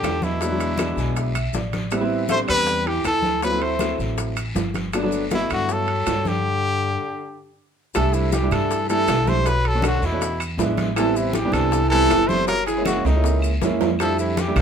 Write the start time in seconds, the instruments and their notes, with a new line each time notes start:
Already playing: tenor saxophone D3, trumpet G4
0.03 upright bass E2, high bongo, low bongo, high conga, high timbale, low timbale, short guiro, claves, maracas
0.22 tenor saxophone B2, trumpet E4, high conga, short guiro, maracas
0.41 grand piano F#3 G#3 B3 D4, high bongo, high timbale, long guiro, maracas
0.51 grand piano F#3 G#3 B3 D4
0.60 high bongo, high conga, high timbale, maracas
0.77 grand piano F#3 G#3 B3 D4, high bongo, high conga, high timbale, short guiro, claves, maracas
0.96 upright bass B1, grand piano G#5, high bongo, high conga, short guiro, maracas
1.16 grand piano E5, high bongo, high conga, high timbale, long guiro, maracas
1.35 grand piano E5, high conga, high timbale, claves, maracas
1.53 upright bass A1, grand piano D5, high bongo, low bongo, high conga, short guiro, maracas
1.73 high bongo, high conga, high timbale, short guiro, maracas
1.91 grand piano G3 B3 C4 E4, high bongo, high timbale, long guiro, claves, maracas
2.00 grand piano G3 B3 C4 E4
2.10 high conga
2.29 grand piano G3 B3 C4 D4, tenor saxophone A3, trumpet C5, high bongo, high conga, high timbale, short guiro, maracas
2.48 upright bass E2, tenor saxophone G3, trumpet B4, high conga, high timbale, short guiro, claves, maracas
2.67 high bongo, high conga, maracas
2.86 tenor saxophone E3, trumpet G4, high conga, high timbale
3.04 upright bass D2, tenor saxophone E3, trumpet A4, high bongo, low bongo, high conga, high timbale, short guiro, claves, maracas
3.23 high conga, short guiro, maracas
3.42 grand piano F#3 A3 C4 E4, tenor saxophone F#3, trumpet B4, high bongo, high conga, high timbale, long guiro, maracas
3.52 grand piano F#3 A3 C4 E4
3.61 tenor saxophone A3, trumpet C5, high bongo, high conga, high timbale
3.79 grand piano F#3 A3 C4 E4, high bongo, high conga, high timbale, short guiro, claves, maracas
3.98 upright bass A1, high bongo, high conga, short guiro, maracas
4.17 high bongo, high conga, high timbale, long guiro, maracas
4.37 high conga, high timbale, claves, maracas
4.55 upright bass G1, high bongo, low bongo, high conga, low timbale, short guiro, maracas
4.74 high bongo, high conga, high timbale, short guiro, maracas
4.93 grand piano F#3 A3 B3 D4, high bongo, high conga, high timbale, long guiro, claves, maracas
5.03 grand piano F#3 A3 B3 D4
5.12 high conga, maracas
5.31 tenor saxophone B2, grand piano F#3 A3 B3 E4, trumpet E4, high bongo, high conga, high timbale, short guiro, maracas
5.50 upright bass G2, tenor saxophone D3, trumpet F#4, high conga, high timbale, short guiro, claves, maracas
5.69 tenor saxophone F#3, trumpet A4, high bongo, high conga, long guiro, maracas
5.88 high conga, high timbale
6.06 upright bass G2, high bongo, low bongo, high conga, high timbale, low timbale, short guiro, claves, maracas
6.25 tenor saxophone D3, trumpet G4, high conga, short guiro, maracas
7.94 upright bass C2, tenor saxophone E3, grand piano G3 A3 D4 E4, trumpet A4, high bongo, high conga, high timbale, long guiro, claves, maracas
8.13 tenor saxophone C3, trumpet E4, high conga, maracas
8.32 tenor saxophone E3, trumpet G4, high bongo, high conga, high timbale, short guiro, maracas
8.43 grand piano G3 A3 D4 E4
8.51 upright bass G2, tenor saxophone E3, trumpet A4, high conga, low conga, high timbale, short guiro, claves, maracas
8.70 high bongo, high conga, long guiro, maracas
8.89 tenor saxophone E3, grand piano G3 A3 D4 E4, trumpet A4, high conga, high timbale, maracas
9.07 upright bass B1, high bongo, low bongo, high conga, high timbale, low timbale, short guiro, claves, maracas
9.26 grand piano G3 A3 D4 E4, tenor saxophone A3, trumpet C5, high conga, short guiro, maracas
9.45 tenor saxophone F#3, trumpet B4, high bongo, high conga, high timbale, long guiro, maracas
9.64 tenor saxophone F#3, trumpet A4, high bongo, high conga, high timbale
9.74 grand piano A3 C#4 D4 F#4
9.82 tenor saxophone D3, high bongo, high conga, high timbale, short guiro, claves, maracas
9.87 trumpet F#4
10.02 upright bass E2, tenor saxophone B2, trumpet E4, high bongo, high conga, short guiro, maracas
10.12 grand piano A3 C#4 D4 F#4
10.21 high bongo, high conga, high timbale, long guiro, maracas
10.40 high conga, high timbale, claves, maracas
10.58 upright bass A1, grand piano G#3 B3 D4 E4, high bongo, low bongo, high conga, low timbale, short guiro, maracas
10.77 high bongo, high conga, high timbale, short guiro, maracas
10.96 tenor saxophone E3, grand piano G3 B3 C4 E4, trumpet A4, high bongo, high conga, high timbale, long guiro, claves, maracas
11.15 tenor saxophone C3, trumpet E4, high conga, maracas
11.33 tenor saxophone E3, trumpet G4, high bongo, high conga, high timbale, short guiro, maracas
11.45 grand piano G3 B3 C4 D4
11.52 upright bass C2, tenor saxophone E3, trumpet A4, high conga, low conga, high timbale, short guiro, claves, maracas
11.71 high bongo, high conga, long guiro, maracas
11.90 tenor saxophone E3, grand piano G3 B3 C4 E4, trumpet A4, high conga, high timbale, maracas
12.09 upright bass F#1, high bongo, low bongo, high conga, high timbale, low timbale, short guiro, claves, maracas
12.27 grand piano G3 B3 C4 E4, tenor saxophone A3, trumpet C5, high conga, short guiro, maracas
12.47 tenor saxophone F#3, trumpet A#4, high bongo, high conga, high timbale, long guiro, maracas
12.66 tenor saxophone E3, trumpet G#4, high bongo, high conga, high timbale, maracas
12.77 grand piano G#3 A#3 C#4 E4
12.85 tenor saxophone C#3, trumpet F#4, high bongo, high conga, high timbale, short guiro, claves, maracas
13.04 upright bass C#2, tenor saxophone A#2, trumpet D#4, high bongo, high conga, high timbale, short guiro, maracas
13.15 grand piano G#3 A#3 C#4 E4
13.23 high bongo, high conga, high timbale, long guiro, maracas
13.42 high conga, claves, maracas
13.61 upright bass F2, grand piano G#3 A#3 C#4 E4, high bongo, low bongo, high conga, low timbale, short guiro, maracas
13.80 high bongo, high conga, low timbale, short guiro, maracas
13.99 tenor saxophone F3, grand piano G3 A3 D4 E4, trumpet A4, high bongo, high conga, high timbale, claves, maracas
14.19 tenor saxophone C3, trumpet E4, high conga, maracas
14.37 tenor saxophone E3, trumpet G4, high bongo, high conga, high timbale, short guiro, maracas
14.47 grand piano G3 A3 D4 E4
14.56 upright bass C2, tenor saxophone F3, high conga, low conga, high timbale, short guiro, claves, maracas